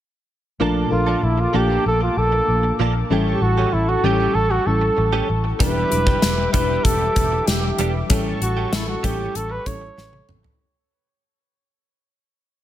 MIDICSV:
0, 0, Header, 1, 8, 480
1, 0, Start_track
1, 0, Tempo, 625000
1, 462, Time_signature, 4, 2, 24, 8
1, 9701, End_track
2, 0, Start_track
2, 0, Title_t, "Analog synth pad"
2, 0, Program_c, 0, 89
2, 460, Note_on_c, 0, 81, 65
2, 462, Note_on_c, 0, 58, 73
2, 462, Note_on_c, 0, 86, 83
2, 2362, Note_off_c, 0, 81, 0
2, 2363, Note_off_c, 0, 58, 0
2, 2363, Note_off_c, 0, 86, 0
2, 2376, Note_on_c, 0, 85, 80
2, 2378, Note_on_c, 0, 69, 75
2, 2380, Note_on_c, 0, 81, 64
2, 4280, Note_off_c, 0, 85, 0
2, 4281, Note_off_c, 0, 69, 0
2, 4282, Note_off_c, 0, 81, 0
2, 4292, Note_on_c, 0, 76, 69
2, 4293, Note_on_c, 0, 67, 77
2, 4295, Note_on_c, 0, 86, 82
2, 6198, Note_off_c, 0, 67, 0
2, 6198, Note_off_c, 0, 76, 0
2, 6199, Note_off_c, 0, 86, 0
2, 6218, Note_on_c, 0, 81, 70
2, 6219, Note_on_c, 0, 69, 73
2, 6222, Note_on_c, 0, 85, 78
2, 8121, Note_off_c, 0, 69, 0
2, 8121, Note_off_c, 0, 81, 0
2, 8123, Note_off_c, 0, 85, 0
2, 9701, End_track
3, 0, Start_track
3, 0, Title_t, "Flugelhorn"
3, 0, Program_c, 1, 56
3, 708, Note_on_c, 1, 65, 72
3, 955, Note_on_c, 1, 64, 72
3, 966, Note_off_c, 1, 65, 0
3, 1072, Note_on_c, 1, 65, 75
3, 1083, Note_off_c, 1, 64, 0
3, 1197, Note_on_c, 1, 67, 85
3, 1208, Note_off_c, 1, 65, 0
3, 1429, Note_off_c, 1, 67, 0
3, 1435, Note_on_c, 1, 69, 90
3, 1541, Note_off_c, 1, 69, 0
3, 1556, Note_on_c, 1, 65, 80
3, 1672, Note_on_c, 1, 69, 93
3, 1684, Note_off_c, 1, 65, 0
3, 2147, Note_off_c, 1, 69, 0
3, 2568, Note_on_c, 1, 67, 57
3, 2627, Note_on_c, 1, 66, 77
3, 2638, Note_off_c, 1, 67, 0
3, 2864, Note_on_c, 1, 64, 75
3, 2875, Note_off_c, 1, 66, 0
3, 2986, Note_on_c, 1, 66, 81
3, 2997, Note_off_c, 1, 64, 0
3, 3102, Note_on_c, 1, 67, 86
3, 3113, Note_off_c, 1, 66, 0
3, 3340, Note_on_c, 1, 69, 96
3, 3351, Note_off_c, 1, 67, 0
3, 3462, Note_on_c, 1, 66, 86
3, 3474, Note_off_c, 1, 69, 0
3, 3583, Note_on_c, 1, 69, 86
3, 3595, Note_off_c, 1, 66, 0
3, 4063, Note_off_c, 1, 69, 0
3, 4298, Note_on_c, 1, 71, 102
3, 4989, Note_off_c, 1, 71, 0
3, 5013, Note_on_c, 1, 71, 88
3, 5255, Note_on_c, 1, 69, 89
3, 5267, Note_off_c, 1, 71, 0
3, 5734, Note_on_c, 1, 67, 71
3, 5745, Note_off_c, 1, 69, 0
3, 6098, Note_off_c, 1, 67, 0
3, 6469, Note_on_c, 1, 66, 76
3, 6709, Note_on_c, 1, 64, 70
3, 6721, Note_off_c, 1, 66, 0
3, 6824, Note_off_c, 1, 64, 0
3, 6828, Note_on_c, 1, 66, 72
3, 6947, Note_on_c, 1, 67, 82
3, 6959, Note_off_c, 1, 66, 0
3, 7190, Note_on_c, 1, 69, 93
3, 7202, Note_off_c, 1, 67, 0
3, 7309, Note_on_c, 1, 71, 92
3, 7320, Note_off_c, 1, 69, 0
3, 7424, Note_on_c, 1, 73, 91
3, 7436, Note_off_c, 1, 71, 0
3, 7903, Note_off_c, 1, 73, 0
3, 9701, End_track
4, 0, Start_track
4, 0, Title_t, "FM electric piano"
4, 0, Program_c, 2, 5
4, 459, Note_on_c, 2, 57, 74
4, 463, Note_on_c, 2, 46, 69
4, 463, Note_on_c, 2, 62, 71
4, 466, Note_on_c, 2, 65, 72
4, 469, Note_on_c, 2, 70, 79
4, 596, Control_c, 2, 64, 127
4, 642, Note_off_c, 2, 57, 0
4, 645, Note_off_c, 2, 62, 0
4, 646, Note_off_c, 2, 65, 0
4, 647, Note_off_c, 2, 70, 0
4, 696, Note_on_c, 2, 69, 64
4, 697, Note_on_c, 2, 62, 57
4, 701, Note_on_c, 2, 65, 60
4, 706, Note_on_c, 2, 70, 70
4, 1063, Note_off_c, 2, 69, 0
4, 1064, Note_off_c, 2, 62, 0
4, 1066, Note_off_c, 2, 65, 0
4, 1068, Note_off_c, 2, 70, 0
4, 1152, Note_off_c, 2, 46, 0
4, 1175, Note_on_c, 2, 69, 62
4, 1181, Note_on_c, 2, 62, 58
4, 1182, Note_on_c, 2, 65, 61
4, 1185, Note_on_c, 2, 58, 73
4, 1906, Note_off_c, 2, 69, 0
4, 1909, Note_off_c, 2, 62, 0
4, 1910, Note_off_c, 2, 65, 0
4, 1912, Note_off_c, 2, 58, 0
4, 2382, Note_on_c, 2, 55, 78
4, 2385, Note_on_c, 2, 61, 74
4, 2387, Note_on_c, 2, 45, 67
4, 2389, Note_on_c, 2, 64, 73
4, 2392, Control_c, 2, 64, 0
4, 2392, Note_on_c, 2, 69, 82
4, 2517, Control_c, 2, 64, 127
4, 2928, Note_off_c, 2, 55, 0
4, 2929, Note_off_c, 2, 61, 0
4, 2931, Note_off_c, 2, 64, 0
4, 2933, Note_off_c, 2, 69, 0
4, 3074, Note_off_c, 2, 45, 0
4, 3101, Note_on_c, 2, 55, 65
4, 3102, Note_on_c, 2, 61, 59
4, 3106, Note_on_c, 2, 64, 59
4, 3108, Note_on_c, 2, 69, 70
4, 3465, Note_off_c, 2, 55, 0
4, 3466, Note_off_c, 2, 61, 0
4, 3468, Note_off_c, 2, 64, 0
4, 3469, Note_off_c, 2, 69, 0
4, 3583, Note_on_c, 2, 55, 61
4, 3585, Note_on_c, 2, 61, 57
4, 3588, Note_on_c, 2, 64, 60
4, 3593, Note_on_c, 2, 69, 71
4, 4128, Note_off_c, 2, 55, 0
4, 4130, Note_off_c, 2, 61, 0
4, 4131, Note_off_c, 2, 64, 0
4, 4133, Note_off_c, 2, 69, 0
4, 4299, Note_on_c, 2, 55, 69
4, 4300, Note_on_c, 2, 62, 61
4, 4303, Note_on_c, 2, 52, 54
4, 4303, Note_on_c, 2, 64, 60
4, 4308, Note_on_c, 2, 71, 71
4, 4313, Control_c, 2, 64, 0
4, 4448, Control_c, 2, 64, 127
4, 4483, Note_off_c, 2, 55, 0
4, 4483, Note_off_c, 2, 62, 0
4, 4485, Note_off_c, 2, 64, 0
4, 4487, Note_off_c, 2, 71, 0
4, 4534, Note_on_c, 2, 54, 52
4, 4537, Note_on_c, 2, 62, 58
4, 4540, Note_on_c, 2, 64, 58
4, 4541, Note_on_c, 2, 71, 69
4, 4584, Note_on_c, 2, 55, 67
4, 4588, Note_off_c, 2, 54, 0
4, 4904, Note_off_c, 2, 62, 0
4, 4905, Note_off_c, 2, 64, 0
4, 4906, Note_off_c, 2, 71, 0
4, 4927, Note_off_c, 2, 55, 0
4, 4992, Note_off_c, 2, 52, 0
4, 5012, Note_on_c, 2, 55, 69
4, 5015, Note_on_c, 2, 62, 60
4, 5018, Note_on_c, 2, 64, 61
4, 5021, Note_on_c, 2, 71, 73
4, 5745, Note_off_c, 2, 55, 0
4, 5746, Note_off_c, 2, 62, 0
4, 5748, Note_off_c, 2, 64, 0
4, 5749, Note_off_c, 2, 71, 0
4, 6215, Note_on_c, 2, 55, 81
4, 6218, Note_on_c, 2, 45, 67
4, 6218, Note_on_c, 2, 61, 72
4, 6221, Note_on_c, 2, 64, 73
4, 6223, Note_on_c, 2, 69, 85
4, 6232, Control_c, 2, 64, 0
4, 6375, Control_c, 2, 64, 127
4, 6764, Note_off_c, 2, 55, 0
4, 6766, Note_off_c, 2, 61, 0
4, 6768, Note_off_c, 2, 64, 0
4, 6768, Note_off_c, 2, 69, 0
4, 6910, Note_off_c, 2, 45, 0
4, 6941, Note_on_c, 2, 55, 65
4, 6942, Note_on_c, 2, 61, 58
4, 6945, Note_on_c, 2, 64, 60
4, 6950, Note_on_c, 2, 69, 71
4, 7305, Note_off_c, 2, 55, 0
4, 7306, Note_off_c, 2, 61, 0
4, 7307, Note_off_c, 2, 64, 0
4, 7310, Note_off_c, 2, 69, 0
4, 7418, Note_on_c, 2, 55, 60
4, 7421, Note_on_c, 2, 61, 59
4, 7424, Note_on_c, 2, 64, 58
4, 7427, Note_on_c, 2, 69, 70
4, 7966, Note_off_c, 2, 55, 0
4, 7967, Note_off_c, 2, 61, 0
4, 7969, Note_off_c, 2, 64, 0
4, 7971, Note_off_c, 2, 69, 0
4, 8154, Control_c, 2, 64, 0
4, 9701, End_track
5, 0, Start_track
5, 0, Title_t, "Clean electric guitar"
5, 0, Program_c, 3, 27
5, 462, Note_on_c, 3, 53, 73
5, 466, Note_on_c, 3, 58, 74
5, 471, Note_on_c, 3, 62, 75
5, 475, Note_on_c, 3, 69, 82
5, 683, Note_off_c, 3, 53, 0
5, 685, Note_off_c, 3, 58, 0
5, 687, Note_off_c, 3, 62, 0
5, 690, Note_off_c, 3, 69, 0
5, 818, Note_on_c, 3, 69, 57
5, 826, Note_on_c, 3, 62, 51
5, 830, Note_on_c, 3, 58, 46
5, 833, Note_on_c, 3, 53, 41
5, 930, Note_off_c, 3, 53, 0
5, 933, Note_off_c, 3, 58, 0
5, 936, Note_off_c, 3, 62, 0
5, 939, Note_off_c, 3, 69, 0
5, 1179, Note_on_c, 3, 53, 73
5, 1183, Note_on_c, 3, 58, 81
5, 1189, Note_on_c, 3, 62, 73
5, 1193, Note_on_c, 3, 69, 81
5, 1291, Note_off_c, 3, 69, 0
5, 1295, Note_off_c, 3, 62, 0
5, 1300, Note_off_c, 3, 58, 0
5, 1301, Note_on_c, 3, 69, 54
5, 1304, Note_off_c, 3, 53, 0
5, 1304, Note_on_c, 3, 62, 51
5, 1309, Note_on_c, 3, 58, 52
5, 1314, Note_on_c, 3, 53, 50
5, 1412, Note_off_c, 3, 53, 0
5, 1417, Note_off_c, 3, 58, 0
5, 1418, Note_off_c, 3, 62, 0
5, 1422, Note_off_c, 3, 69, 0
5, 2147, Note_on_c, 3, 53, 79
5, 2153, Note_on_c, 3, 58, 82
5, 2159, Note_on_c, 3, 62, 89
5, 2162, Note_on_c, 3, 69, 85
5, 2254, Note_off_c, 3, 69, 0
5, 2260, Note_off_c, 3, 62, 0
5, 2265, Note_off_c, 3, 58, 0
5, 2303, Note_off_c, 3, 53, 0
5, 2386, Note_on_c, 3, 52, 67
5, 2390, Note_on_c, 3, 57, 70
5, 2397, Note_on_c, 3, 61, 76
5, 2401, Note_on_c, 3, 67, 82
5, 2605, Note_off_c, 3, 52, 0
5, 2607, Note_off_c, 3, 57, 0
5, 2610, Note_off_c, 3, 61, 0
5, 2612, Note_off_c, 3, 67, 0
5, 2746, Note_on_c, 3, 67, 55
5, 2753, Note_on_c, 3, 61, 54
5, 2758, Note_on_c, 3, 57, 47
5, 2760, Note_on_c, 3, 52, 46
5, 2855, Note_off_c, 3, 52, 0
5, 2860, Note_off_c, 3, 57, 0
5, 2862, Note_off_c, 3, 61, 0
5, 2864, Note_off_c, 3, 67, 0
5, 3103, Note_on_c, 3, 52, 74
5, 3107, Note_on_c, 3, 57, 74
5, 3114, Note_on_c, 3, 61, 73
5, 3118, Note_on_c, 3, 67, 89
5, 3213, Note_off_c, 3, 67, 0
5, 3218, Note_off_c, 3, 61, 0
5, 3222, Note_off_c, 3, 57, 0
5, 3222, Note_on_c, 3, 67, 56
5, 3225, Note_off_c, 3, 52, 0
5, 3228, Note_on_c, 3, 61, 54
5, 3232, Note_on_c, 3, 57, 48
5, 3235, Note_on_c, 3, 52, 45
5, 3331, Note_off_c, 3, 52, 0
5, 3334, Note_off_c, 3, 57, 0
5, 3337, Note_off_c, 3, 61, 0
5, 3341, Note_off_c, 3, 67, 0
5, 3936, Note_on_c, 3, 67, 72
5, 3941, Note_on_c, 3, 61, 72
5, 3946, Note_on_c, 3, 57, 61
5, 3949, Note_on_c, 3, 52, 63
5, 4052, Note_off_c, 3, 52, 0
5, 4055, Note_off_c, 3, 57, 0
5, 4056, Note_off_c, 3, 61, 0
5, 4061, Note_off_c, 3, 67, 0
5, 4295, Note_on_c, 3, 55, 77
5, 4301, Note_on_c, 3, 59, 84
5, 4306, Note_on_c, 3, 62, 84
5, 4310, Note_on_c, 3, 67, 86
5, 4519, Note_off_c, 3, 55, 0
5, 4522, Note_off_c, 3, 59, 0
5, 4525, Note_off_c, 3, 62, 0
5, 4527, Note_off_c, 3, 67, 0
5, 4656, Note_on_c, 3, 67, 61
5, 4662, Note_on_c, 3, 62, 56
5, 4666, Note_on_c, 3, 59, 53
5, 4670, Note_on_c, 3, 55, 49
5, 4770, Note_off_c, 3, 55, 0
5, 4775, Note_off_c, 3, 59, 0
5, 4778, Note_off_c, 3, 62, 0
5, 4783, Note_off_c, 3, 67, 0
5, 5016, Note_on_c, 3, 55, 75
5, 5022, Note_on_c, 3, 59, 70
5, 5027, Note_on_c, 3, 62, 76
5, 5031, Note_on_c, 3, 67, 72
5, 5129, Note_off_c, 3, 67, 0
5, 5136, Note_off_c, 3, 62, 0
5, 5139, Note_on_c, 3, 67, 59
5, 5141, Note_off_c, 3, 59, 0
5, 5143, Note_off_c, 3, 55, 0
5, 5145, Note_on_c, 3, 62, 52
5, 5150, Note_on_c, 3, 59, 52
5, 5152, Note_on_c, 3, 55, 48
5, 5252, Note_off_c, 3, 55, 0
5, 5257, Note_off_c, 3, 59, 0
5, 5259, Note_off_c, 3, 62, 0
5, 5262, Note_off_c, 3, 67, 0
5, 5981, Note_on_c, 3, 55, 76
5, 5987, Note_on_c, 3, 59, 79
5, 5990, Note_on_c, 3, 62, 81
5, 5996, Note_on_c, 3, 67, 81
5, 6097, Note_off_c, 3, 67, 0
5, 6102, Note_off_c, 3, 62, 0
5, 6107, Note_off_c, 3, 59, 0
5, 6140, Note_off_c, 3, 55, 0
5, 6223, Note_on_c, 3, 52, 70
5, 6229, Note_on_c, 3, 57, 81
5, 6233, Note_on_c, 3, 61, 71
5, 6240, Note_on_c, 3, 67, 78
5, 6444, Note_off_c, 3, 52, 0
5, 6446, Note_off_c, 3, 57, 0
5, 6449, Note_off_c, 3, 61, 0
5, 6452, Note_off_c, 3, 67, 0
5, 6579, Note_on_c, 3, 67, 60
5, 6583, Note_on_c, 3, 61, 49
5, 6588, Note_on_c, 3, 57, 51
5, 6594, Note_on_c, 3, 52, 46
5, 6692, Note_off_c, 3, 52, 0
5, 6694, Note_off_c, 3, 57, 0
5, 6699, Note_off_c, 3, 61, 0
5, 6704, Note_off_c, 3, 67, 0
5, 6935, Note_on_c, 3, 52, 74
5, 6940, Note_on_c, 3, 57, 74
5, 6944, Note_on_c, 3, 61, 75
5, 6948, Note_on_c, 3, 67, 81
5, 7049, Note_off_c, 3, 67, 0
5, 7054, Note_off_c, 3, 61, 0
5, 7056, Note_off_c, 3, 57, 0
5, 7058, Note_on_c, 3, 67, 54
5, 7062, Note_off_c, 3, 52, 0
5, 7063, Note_on_c, 3, 61, 53
5, 7065, Note_on_c, 3, 57, 48
5, 7071, Note_on_c, 3, 52, 41
5, 7169, Note_off_c, 3, 52, 0
5, 7174, Note_off_c, 3, 57, 0
5, 7177, Note_off_c, 3, 61, 0
5, 7180, Note_off_c, 3, 67, 0
5, 9701, End_track
6, 0, Start_track
6, 0, Title_t, "Fingered electric bass"
6, 0, Program_c, 4, 33
6, 464, Note_on_c, 4, 34, 81
6, 636, Note_off_c, 4, 34, 0
6, 703, Note_on_c, 4, 34, 76
6, 875, Note_off_c, 4, 34, 0
6, 943, Note_on_c, 4, 34, 87
6, 1116, Note_off_c, 4, 34, 0
6, 1184, Note_on_c, 4, 34, 77
6, 1356, Note_off_c, 4, 34, 0
6, 1426, Note_on_c, 4, 34, 86
6, 1598, Note_off_c, 4, 34, 0
6, 1665, Note_on_c, 4, 34, 86
6, 1836, Note_off_c, 4, 34, 0
6, 1904, Note_on_c, 4, 34, 93
6, 2076, Note_off_c, 4, 34, 0
6, 2144, Note_on_c, 4, 34, 80
6, 2316, Note_off_c, 4, 34, 0
6, 2382, Note_on_c, 4, 33, 87
6, 2555, Note_off_c, 4, 33, 0
6, 2621, Note_on_c, 4, 33, 83
6, 2794, Note_off_c, 4, 33, 0
6, 2864, Note_on_c, 4, 33, 89
6, 3036, Note_off_c, 4, 33, 0
6, 3098, Note_on_c, 4, 33, 81
6, 3273, Note_off_c, 4, 33, 0
6, 3338, Note_on_c, 4, 33, 90
6, 3512, Note_off_c, 4, 33, 0
6, 3582, Note_on_c, 4, 33, 74
6, 3755, Note_off_c, 4, 33, 0
6, 3822, Note_on_c, 4, 33, 96
6, 3995, Note_off_c, 4, 33, 0
6, 4065, Note_on_c, 4, 33, 79
6, 4237, Note_off_c, 4, 33, 0
6, 4303, Note_on_c, 4, 28, 91
6, 4475, Note_off_c, 4, 28, 0
6, 4546, Note_on_c, 4, 28, 87
6, 4717, Note_off_c, 4, 28, 0
6, 4786, Note_on_c, 4, 28, 96
6, 4958, Note_off_c, 4, 28, 0
6, 5022, Note_on_c, 4, 28, 91
6, 5195, Note_off_c, 4, 28, 0
6, 5259, Note_on_c, 4, 28, 79
6, 5433, Note_off_c, 4, 28, 0
6, 5502, Note_on_c, 4, 28, 77
6, 5675, Note_off_c, 4, 28, 0
6, 5741, Note_on_c, 4, 28, 94
6, 5914, Note_off_c, 4, 28, 0
6, 5981, Note_on_c, 4, 28, 86
6, 6154, Note_off_c, 4, 28, 0
6, 6220, Note_on_c, 4, 33, 88
6, 6394, Note_off_c, 4, 33, 0
6, 6461, Note_on_c, 4, 33, 87
6, 6634, Note_off_c, 4, 33, 0
6, 6700, Note_on_c, 4, 33, 86
6, 6874, Note_off_c, 4, 33, 0
6, 6942, Note_on_c, 4, 33, 92
6, 7115, Note_off_c, 4, 33, 0
6, 7183, Note_on_c, 4, 33, 85
6, 7355, Note_off_c, 4, 33, 0
6, 7421, Note_on_c, 4, 33, 82
6, 7594, Note_off_c, 4, 33, 0
6, 7661, Note_on_c, 4, 33, 94
6, 7834, Note_off_c, 4, 33, 0
6, 7904, Note_on_c, 4, 33, 78
6, 8076, Note_off_c, 4, 33, 0
6, 9701, End_track
7, 0, Start_track
7, 0, Title_t, "Muted clean electric guitar strokes"
7, 707, Note_on_c, 9, 29, 35
7, 784, Note_off_c, 9, 29, 0
7, 939, Note_on_c, 9, 29, 37
7, 1016, Note_off_c, 9, 29, 0
7, 1057, Note_on_c, 9, 29, 38
7, 1134, Note_off_c, 9, 29, 0
7, 1421, Note_on_c, 9, 29, 34
7, 1498, Note_off_c, 9, 29, 0
7, 1541, Note_on_c, 9, 29, 42
7, 1618, Note_off_c, 9, 29, 0
7, 1783, Note_on_c, 9, 29, 44
7, 1860, Note_off_c, 9, 29, 0
7, 2023, Note_on_c, 9, 29, 37
7, 2099, Note_off_c, 9, 29, 0
7, 2264, Note_on_c, 9, 29, 40
7, 2340, Note_off_c, 9, 29, 0
7, 2626, Note_on_c, 9, 29, 33
7, 2703, Note_off_c, 9, 29, 0
7, 2864, Note_on_c, 9, 29, 35
7, 2941, Note_off_c, 9, 29, 0
7, 2988, Note_on_c, 9, 29, 40
7, 3065, Note_off_c, 9, 29, 0
7, 3340, Note_on_c, 9, 29, 37
7, 3417, Note_off_c, 9, 29, 0
7, 3461, Note_on_c, 9, 29, 47
7, 3538, Note_off_c, 9, 29, 0
7, 3698, Note_on_c, 9, 29, 41
7, 3774, Note_off_c, 9, 29, 0
7, 3814, Note_on_c, 9, 29, 33
7, 3891, Note_off_c, 9, 29, 0
7, 4061, Note_on_c, 9, 29, 42
7, 4138, Note_off_c, 9, 29, 0
7, 4179, Note_on_c, 9, 29, 43
7, 4255, Note_off_c, 9, 29, 0
7, 4535, Note_on_c, 9, 29, 46
7, 4612, Note_off_c, 9, 29, 0
7, 4780, Note_on_c, 9, 29, 32
7, 4856, Note_off_c, 9, 29, 0
7, 4900, Note_on_c, 9, 29, 37
7, 4977, Note_off_c, 9, 29, 0
7, 5261, Note_on_c, 9, 29, 42
7, 5338, Note_off_c, 9, 29, 0
7, 5384, Note_on_c, 9, 29, 41
7, 5460, Note_off_c, 9, 29, 0
7, 5622, Note_on_c, 9, 29, 43
7, 5699, Note_off_c, 9, 29, 0
7, 5865, Note_on_c, 9, 29, 40
7, 5942, Note_off_c, 9, 29, 0
7, 6106, Note_on_c, 9, 29, 35
7, 6183, Note_off_c, 9, 29, 0
7, 6461, Note_on_c, 9, 29, 34
7, 6538, Note_off_c, 9, 29, 0
7, 6818, Note_on_c, 9, 29, 42
7, 6895, Note_off_c, 9, 29, 0
7, 7179, Note_on_c, 9, 29, 35
7, 7255, Note_off_c, 9, 29, 0
7, 7293, Note_on_c, 9, 29, 43
7, 7370, Note_off_c, 9, 29, 0
7, 7537, Note_on_c, 9, 29, 41
7, 7614, Note_off_c, 9, 29, 0
7, 7657, Note_on_c, 9, 29, 37
7, 7734, Note_off_c, 9, 29, 0
7, 7778, Note_on_c, 9, 29, 39
7, 7854, Note_off_c, 9, 29, 0
7, 8013, Note_on_c, 9, 29, 34
7, 8090, Note_off_c, 9, 29, 0
7, 9701, End_track
8, 0, Start_track
8, 0, Title_t, "Drums"
8, 4302, Note_on_c, 9, 36, 102
8, 4303, Note_on_c, 9, 42, 89
8, 4379, Note_off_c, 9, 36, 0
8, 4379, Note_off_c, 9, 42, 0
8, 4544, Note_on_c, 9, 42, 64
8, 4621, Note_off_c, 9, 42, 0
8, 4659, Note_on_c, 9, 36, 83
8, 4736, Note_off_c, 9, 36, 0
8, 4779, Note_on_c, 9, 38, 101
8, 4781, Note_on_c, 9, 42, 68
8, 4856, Note_off_c, 9, 38, 0
8, 4857, Note_off_c, 9, 42, 0
8, 5020, Note_on_c, 9, 42, 63
8, 5022, Note_on_c, 9, 36, 79
8, 5097, Note_off_c, 9, 42, 0
8, 5098, Note_off_c, 9, 36, 0
8, 5259, Note_on_c, 9, 36, 90
8, 5261, Note_on_c, 9, 42, 75
8, 5336, Note_off_c, 9, 36, 0
8, 5338, Note_off_c, 9, 42, 0
8, 5499, Note_on_c, 9, 42, 61
8, 5501, Note_on_c, 9, 36, 81
8, 5576, Note_off_c, 9, 42, 0
8, 5578, Note_off_c, 9, 36, 0
8, 5741, Note_on_c, 9, 42, 78
8, 5742, Note_on_c, 9, 38, 90
8, 5817, Note_off_c, 9, 42, 0
8, 5819, Note_off_c, 9, 38, 0
8, 5979, Note_on_c, 9, 42, 65
8, 6056, Note_off_c, 9, 42, 0
8, 6219, Note_on_c, 9, 42, 89
8, 6221, Note_on_c, 9, 36, 102
8, 6296, Note_off_c, 9, 42, 0
8, 6298, Note_off_c, 9, 36, 0
8, 6464, Note_on_c, 9, 42, 65
8, 6541, Note_off_c, 9, 42, 0
8, 6702, Note_on_c, 9, 38, 103
8, 6703, Note_on_c, 9, 42, 71
8, 6778, Note_off_c, 9, 38, 0
8, 6780, Note_off_c, 9, 42, 0
8, 6942, Note_on_c, 9, 36, 72
8, 6942, Note_on_c, 9, 42, 63
8, 7019, Note_off_c, 9, 36, 0
8, 7019, Note_off_c, 9, 42, 0
8, 7183, Note_on_c, 9, 42, 75
8, 7260, Note_off_c, 9, 42, 0
8, 7420, Note_on_c, 9, 42, 62
8, 7421, Note_on_c, 9, 36, 75
8, 7497, Note_off_c, 9, 42, 0
8, 7498, Note_off_c, 9, 36, 0
8, 7662, Note_on_c, 9, 38, 46
8, 7739, Note_off_c, 9, 38, 0
8, 7779, Note_on_c, 9, 48, 52
8, 7856, Note_off_c, 9, 48, 0
8, 7900, Note_on_c, 9, 45, 72
8, 7977, Note_off_c, 9, 45, 0
8, 8021, Note_on_c, 9, 43, 78
8, 8098, Note_off_c, 9, 43, 0
8, 9701, End_track
0, 0, End_of_file